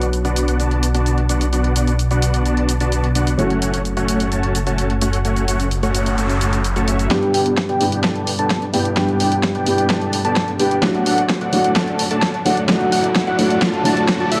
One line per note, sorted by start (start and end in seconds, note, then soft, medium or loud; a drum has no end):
0.00 3.36 B1 medium
0.00 3.35 B2 medium
0.00 3.36 F#3 medium
0.00 3.36 B3 medium
0.00 3.36 D4 medium
0.00 3.37 F#4 medium
0.00 closed hi-hat soft
0.00 shaker soft
0.13 closed hi-hat soft
0.13 shaker soft
0.25 0.57 B3 medium
0.25 0.57 D4 medium
0.25 0.57 F#4 medium
0.25 0.57 D5 medium
0.25 0.57 F#5 loud
0.25 closed hi-hat soft
0.25 shaker soft
0.36 closed hi-hat medium
0.36 shaker medium
0.48 closed hi-hat soft
0.48 shaker soft
0.60 0.86 B3 medium
0.60 0.86 D4 medium
0.60 0.86 F#4 medium
0.60 0.86 D5 medium
0.60 0.86 A5 medium
0.60 closed hi-hat soft
0.60 shaker soft
0.71 closed hi-hat soft
0.83 closed hi-hat medium
0.83 shaker medium
0.94 1.21 B3 medium
0.94 1.21 D4 medium
0.94 1.21 F#4 medium
0.94 1.21 D5 medium
0.94 1.21 A5 medium
0.94 closed hi-hat soft
0.94 shaker soft
1.06 closed hi-hat soft
1.06 shaker soft
1.18 closed hi-hat soft
1.29 1.46 B3 medium
1.29 1.46 D4 medium
1.29 1.46 F#4 medium
1.29 1.46 D5 medium
1.29 1.46 F#5 medium
1.29 closed hi-hat medium
1.29 shaker medium
1.41 closed hi-hat soft
1.41 shaker soft
1.53 1.73 B3 medium
1.53 1.73 D4 medium
1.53 1.73 F#4 medium
1.53 1.73 D5 medium
1.53 1.73 F#5 medium
1.53 closed hi-hat soft
1.53 shaker soft
1.64 closed hi-hat soft
1.76 1.92 B3 medium
1.76 1.92 D4 medium
1.76 1.92 F#4 medium
1.76 1.92 D5 medium
1.76 1.92 F#5 medium
1.76 closed hi-hat medium
1.76 shaker medium
1.87 closed hi-hat soft
1.87 shaker soft
1.99 closed hi-hat soft
1.99 shaker soft
2.11 2.43 B3 medium
2.11 2.43 D4 medium
2.11 2.43 F#4 medium
2.11 2.43 D5 medium
2.11 2.43 F#5 loud
2.11 closed hi-hat soft
2.11 shaker soft
2.22 closed hi-hat medium
2.22 shaker medium
2.34 closed hi-hat soft
2.34 shaker soft
2.45 2.72 B3 medium
2.45 2.72 D4 medium
2.45 2.72 F#4 medium
2.45 2.72 D5 medium
2.45 2.72 A5 medium
2.45 closed hi-hat soft
2.45 shaker soft
2.57 closed hi-hat soft
2.69 closed hi-hat medium
2.69 shaker medium
2.80 3.07 B3 medium
2.80 3.07 D4 medium
2.80 3.07 F#4 medium
2.80 3.07 D5 medium
2.80 3.07 A5 medium
2.80 closed hi-hat soft
2.80 shaker soft
2.92 closed hi-hat soft
2.92 shaker soft
3.04 closed hi-hat soft
3.15 3.32 B3 medium
3.15 3.32 D4 medium
3.15 3.32 F#4 medium
3.15 3.32 D5 medium
3.15 3.32 F#5 medium
3.15 closed hi-hat medium
3.15 shaker medium
3.27 closed hi-hat soft
3.27 shaker soft
3.38 7.09 F#1 medium
3.38 7.07 F#3 medium
3.38 7.08 A3 medium
3.38 3.59 A3 medium
3.38 3.59 C#4 medium
3.38 7.08 C#4 medium
3.38 3.59 F#4 medium
3.38 7.09 F#4 medium
3.38 3.59 C#5 medium
3.38 3.59 F#5 medium
3.38 closed hi-hat soft
3.38 shaker soft
3.50 closed hi-hat soft
3.62 3.78 A3 medium
3.62 3.78 C#4 medium
3.62 3.78 F#4 medium
3.62 3.78 C#5 medium
3.62 3.78 F#5 medium
3.62 closed hi-hat medium
3.62 shaker medium
3.74 closed hi-hat medium
3.74 shaker soft
3.85 closed hi-hat soft
3.85 shaker soft
3.97 4.29 A3 medium
3.97 4.29 C#4 medium
3.97 4.29 F#4 medium
3.97 4.29 C#5 medium
3.97 4.29 F#5 loud
3.97 closed hi-hat soft
3.97 shaker soft
4.08 closed hi-hat medium
4.08 shaker medium
4.20 closed hi-hat soft
4.20 shaker soft
4.32 4.58 A3 medium
4.32 4.58 C#4 medium
4.32 4.58 F#4 medium
4.32 4.58 C#5 medium
4.32 4.58 A5 medium
4.32 closed hi-hat medium
4.32 shaker soft
4.43 closed hi-hat soft
4.55 closed hi-hat medium
4.55 shaker medium
4.67 4.93 A3 medium
4.67 4.93 C#4 medium
4.67 4.93 F#4 medium
4.67 4.93 C#5 medium
4.67 4.93 A5 medium
4.67 closed hi-hat soft
4.67 shaker soft
4.78 closed hi-hat soft
4.78 shaker soft
4.90 closed hi-hat soft
5.01 5.18 A3 medium
5.01 5.18 C#4 medium
5.01 5.18 F#4 medium
5.01 5.18 C#5 medium
5.01 5.18 F#5 medium
5.01 closed hi-hat medium
5.01 shaker medium
5.13 closed hi-hat soft
5.13 shaker soft
5.25 5.45 A3 medium
5.25 5.45 C#4 medium
5.25 5.45 F#4 medium
5.25 5.45 C#5 medium
5.25 5.45 F#5 medium
5.25 closed hi-hat soft
5.25 noise sweep medium
5.25 shaker soft
5.36 closed hi-hat soft
5.36 shaker soft
5.48 5.65 A3 medium
5.48 5.65 C#4 medium
5.48 5.65 F#4 medium
5.48 5.65 C#5 medium
5.48 5.65 F#5 medium
5.48 closed hi-hat medium
5.48 shaker medium
5.60 closed hi-hat medium
5.60 shaker soft
5.71 closed hi-hat soft
5.71 shaker soft
5.83 6.15 A3 medium
5.83 6.15 C#4 medium
5.83 6.15 F#4 medium
5.83 6.15 C#5 medium
5.83 6.15 F#5 loud
5.83 closed hi-hat soft
5.83 shaker soft
5.95 closed hi-hat medium
5.95 shaker medium
6.06 closed hi-hat medium
6.06 shaker soft
6.18 6.39 A3 medium
6.18 6.39 C#4 medium
6.18 6.39 F#4 medium
6.18 6.39 C#5 medium
6.18 6.39 A5 medium
6.18 closed hi-hat soft
6.18 shaker soft
6.29 closed hi-hat soft
6.29 shaker soft
6.41 6.57 A3 medium
6.41 6.57 C#4 medium
6.41 6.57 F#4 medium
6.41 6.57 C#5 medium
6.41 6.57 A5 loud
6.41 closed hi-hat medium
6.41 shaker medium
6.53 closed hi-hat medium
6.53 shaker soft
6.64 closed hi-hat medium
6.64 shaker soft
6.76 6.86 A3 medium
6.76 6.86 C#4 medium
6.76 6.86 F#4 medium
6.76 6.86 C#5 medium
6.76 6.86 A5 medium
6.76 closed hi-hat soft
6.76 shaker soft
6.88 7.08 A3 medium
6.88 7.08 C#4 medium
6.88 7.08 F#4 medium
6.88 7.08 C#5 medium
6.88 7.08 E5 loud
6.88 closed hi-hat medium
6.88 shaker medium
6.99 closed hi-hat medium
6.99 shaker soft
7.10 7.32 G1 medium
7.10 7.77 G2 medium
7.10 7.78 G3 medium
7.10 7.78 B3 medium
7.10 7.31 B3 medium
7.10 7.31 D4 medium
7.10 7.78 D4 medium
7.10 7.31 G4 medium
7.10 7.78 G4 loud
7.10 7.31 D5 medium
7.10 7.31 G5 medium
7.10 kick loud
7.10 snare soft
7.10 closed hi-hat soft
7.10 riser medium
7.23 closed hi-hat soft
7.34 7.67 G1 medium
7.34 7.51 B3 medium
7.34 7.51 D4 medium
7.34 7.51 G4 medium
7.34 7.51 D5 medium
7.34 7.50 G5 medium
7.34 7.51 G5 medium
7.34 open hi-hat loud
7.46 closed hi-hat medium
7.57 kick loud
7.57 snare soft
7.57 closed hi-hat medium
7.69 8.02 G1 medium
7.69 8.01 B3 loud
7.69 8.01 D4 medium
7.69 8.01 G4 medium
7.69 8.01 D5 medium
7.69 8.01 G5 loud
7.69 closed hi-hat soft
7.80 7.93 G2 medium
7.80 7.93 G3 medium
7.80 7.93 B3 medium
7.80 7.93 D4 medium
7.80 7.94 G4 medium
7.80 open hi-hat loud
7.92 closed hi-hat medium
8.04 8.36 G1 medium
8.04 8.30 B3 medium
8.04 8.30 D4 medium
8.04 8.30 G4 medium
8.04 8.30 D5 medium
8.04 8.30 A5 medium
8.04 kick loud
8.04 snare soft
8.04 closed hi-hat medium
8.15 closed hi-hat soft
8.27 open hi-hat loud
8.39 8.71 G1 medium
8.39 8.65 B3 medium
8.39 8.65 D4 medium
8.39 8.65 G4 medium
8.39 8.65 D5 medium
8.39 8.65 A5 loud
8.39 8.65 A5 medium
8.39 closed hi-hat medium
8.50 kick loud
8.50 snare soft
8.50 closed hi-hat medium
8.62 closed hi-hat soft
8.73 8.95 G1 medium
8.73 8.94 G2 medium
8.73 8.94 G3 medium
8.73 8.94 B3 medium
8.73 8.90 B3 medium
8.73 8.90 D4 medium
8.73 8.94 D4 medium
8.73 8.90 G4 medium
8.73 8.94 G4 loud
8.73 8.90 D5 medium
8.73 8.90 G5 medium
8.73 open hi-hat medium
8.85 closed hi-hat medium
8.96 9.18 G1 medium
8.96 9.63 G2 medium
8.96 9.64 G3 medium
8.96 9.64 B3 medium
8.96 9.17 B3 medium
8.96 9.17 D4 medium
8.96 9.64 D4 medium
8.96 9.17 G4 medium
8.96 9.64 G4 loud
8.96 9.17 D5 medium
8.96 9.17 G5 medium
8.96 kick loud
8.96 snare soft
8.96 closed hi-hat soft
9.09 closed hi-hat soft
9.20 9.53 G1 medium
9.20 9.37 B3 medium
9.20 9.37 D4 medium
9.20 9.37 G4 medium
9.20 9.37 D5 medium
9.20 9.36 G5 medium
9.20 9.37 G5 medium
9.20 open hi-hat loud
9.32 closed hi-hat soft
9.43 kick loud
9.43 snare soft
9.43 closed hi-hat soft
9.55 9.88 G1 medium
9.55 9.87 B3 medium
9.55 9.87 D4 medium
9.55 9.87 G4 medium
9.55 9.87 D5 medium
9.55 9.87 G5 loud
9.55 closed hi-hat soft
9.66 9.79 G2 medium
9.66 9.79 G3 medium
9.66 9.79 B3 medium
9.66 9.79 D4 medium
9.66 9.80 G4 medium
9.66 open hi-hat loud
9.78 closed hi-hat soft
9.90 10.22 G1 medium
9.90 10.16 B3 medium
9.90 10.16 A5 medium
9.90 kick loud
9.90 snare medium
9.90 closed hi-hat soft
10.01 closed hi-hat soft
10.13 open hi-hat loud
10.25 10.57 G2 medium
10.25 10.51 B3 medium
10.25 10.51 D4 medium
10.25 10.51 G4 medium
10.25 10.51 D5 medium
10.25 10.51 A5 loud
10.25 10.51 A5 medium
10.25 closed hi-hat medium
10.36 kick loud
10.36 snare medium
10.36 closed hi-hat medium
10.48 closed hi-hat soft
10.59 10.81 G1 loud
10.59 10.80 G3 medium
10.59 10.80 B3 medium
10.59 10.76 B3 medium
10.59 10.76 D4 medium
10.59 10.80 D4 medium
10.59 10.76 G4 medium
10.59 10.80 G4 medium
10.59 10.76 D5 medium
10.59 10.76 G5 medium
10.59 open hi-hat loud
10.71 closed hi-hat medium
10.81 11.04 D2 medium
10.81 11.49 F#3 medium
10.81 11.50 A3 medium
10.81 11.03 A3 medium
10.81 11.03 D4 medium
10.81 11.50 D4 medium
10.81 11.03 F#4 medium
10.81 11.50 F#4 loud
10.81 11.03 D5 medium
10.81 11.03 F#5 medium
10.81 kick loud
10.81 snare medium
10.81 closed hi-hat soft
10.95 closed hi-hat soft
11.06 11.39 D2 medium
11.06 11.23 A3 medium
11.06 11.23 D4 medium
11.06 11.23 F#4 medium
11.06 11.23 D5 medium
11.06 11.23 F#5 medium
11.06 open hi-hat loud
11.18 closed hi-hat soft
11.29 kick loud
11.29 snare medium
11.29 closed hi-hat soft
11.41 11.74 D2 loud
11.41 11.73 A3 medium
11.41 11.73 D4 medium
11.41 11.73 F#4 medium
11.41 11.73 D5 medium
11.41 11.73 F#5 loud
11.41 closed hi-hat soft
11.52 11.65 F#3 medium
11.52 11.65 A3 medium
11.52 11.65 D4 medium
11.52 11.66 F#4 medium
11.52 open hi-hat loud
11.64 closed hi-hat soft
11.76 12.09 D2 loud
11.76 12.02 A3 medium
11.76 12.02 D4 medium
11.76 12.02 F#4 medium
11.76 12.02 D5 medium
11.76 12.02 A5 medium
11.76 kick loud
11.76 snare medium
11.76 closed hi-hat soft
11.88 closed hi-hat soft
11.99 open hi-hat loud
12.11 12.43 D2 loud
12.11 12.37 A3 medium
12.11 12.37 D4 medium
12.11 12.37 F#4 medium
12.11 12.37 D5 medium
12.11 12.37 A5 loud
12.11 12.37 A5 medium
12.11 closed hi-hat medium
12.22 kick loud
12.22 snare medium
12.22 closed hi-hat soft
12.34 closed hi-hat soft
12.45 12.67 D2 loud
12.45 12.66 F#3 medium
12.45 12.66 A3 medium
12.45 12.62 A3 medium
12.45 12.62 D4 medium
12.45 12.66 D4 medium
12.45 12.62 F#4 medium
12.45 12.66 F#4 medium
12.45 12.62 D5 medium
12.45 12.62 F#5 medium
12.45 open hi-hat loud
12.57 closed hi-hat soft
12.68 12.90 D2 medium
12.68 13.35 F#3 medium
12.68 13.36 A3 medium
12.68 12.89 A3 medium
12.68 12.89 D4 medium
12.68 13.36 D4 medium
12.68 12.89 F#4 medium
12.68 13.37 F#4 loud
12.68 12.89 D5 medium
12.68 12.89 F#5 medium
12.68 kick loud
12.68 snare medium
12.68 closed hi-hat soft
12.81 closed hi-hat soft
12.92 13.25 D2 medium
12.92 13.09 A3 medium
12.92 13.09 D4 medium
12.92 13.09 F#4 medium
12.92 13.09 D5 medium
12.92 13.09 F#5 medium
12.92 open hi-hat loud
13.04 closed hi-hat soft
13.16 kick loud
13.16 snare medium
13.16 closed hi-hat soft
13.27 13.60 D2 medium
13.27 13.59 A3 medium
13.27 13.59 D4 medium
13.27 13.59 F#4 medium
13.27 13.59 D5 medium
13.27 13.59 F#5 loud
13.27 closed hi-hat soft
13.38 13.51 F#3 medium
13.38 13.51 A3 medium
13.38 13.51 D4 medium
13.38 13.52 F#4 medium
13.38 open hi-hat loud
13.50 closed hi-hat soft
13.62 13.83 D2 loud
13.62 13.83 A5 medium
13.62 kick loud
13.62 snare medium
13.62 closed hi-hat soft
13.74 closed hi-hat soft
13.84 14.18 D2 loud
13.84 14.40 F#3 medium
13.84 14.40 A3 medium
13.84 14.02 A3 medium
13.84 14.02 D4 medium
13.84 14.40 D4 medium
13.84 14.02 F#4 medium
13.84 14.40 F#4 medium
13.84 14.02 D5 medium
13.84 14.02 A5 loud
13.84 open hi-hat loud
13.97 closed hi-hat soft
14.08 kick loud
14.08 snare medium
14.08 closed hi-hat soft
14.20 14.29 D2 medium
14.20 14.30 A3 medium
14.20 14.30 D4 medium
14.20 14.30 F#4 medium
14.20 14.30 D5 medium
14.20 14.30 A5 loud
14.20 closed hi-hat soft
14.32 14.40 D2 medium
14.32 14.40 A3 medium
14.32 14.40 D4 medium
14.32 14.40 F#4 medium
14.32 14.40 D5 medium
14.32 14.40 E5 loud
14.32 open hi-hat loud